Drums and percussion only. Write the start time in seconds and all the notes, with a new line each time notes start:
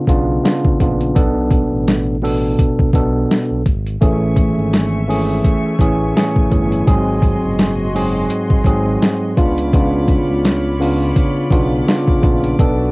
0.07 kick, closed hi-hat
0.45 snare, closed hi-hat
0.65 kick
0.80 kick, closed hi-hat
1.01 closed hi-hat
1.16 kick, closed hi-hat
1.51 kick, closed hi-hat
1.88 snare, closed hi-hat
2.25 open hi-hat
2.59 kick, closed hi-hat
2.79 kick
2.93 kick, closed hi-hat
3.31 snare, closed hi-hat
3.66 kick, closed hi-hat
3.87 closed hi-hat
4.02 kick, closed hi-hat
4.36 kick, closed hi-hat
4.73 snare, closed hi-hat
5.10 open hi-hat
5.44 kick, closed hi-hat
5.79 kick, closed hi-hat
6.17 snare, closed hi-hat
6.36 kick
6.51 kick, closed hi-hat
6.72 closed hi-hat
6.87 kick, closed hi-hat
7.22 kick, closed hi-hat
7.59 snare, closed hi-hat
7.96 open hi-hat
8.30 closed hi-hat
8.50 kick
8.64 kick, closed hi-hat
9.02 snare, closed hi-hat
9.37 kick, closed hi-hat
9.58 closed hi-hat
9.73 kick, closed hi-hat
10.08 kick, closed hi-hat
10.45 snare, closed hi-hat
10.82 open hi-hat
11.16 kick, closed hi-hat
11.50 kick, closed hi-hat
11.88 snare, closed hi-hat
12.08 kick
12.23 kick, closed hi-hat
12.44 closed hi-hat
12.59 kick, closed hi-hat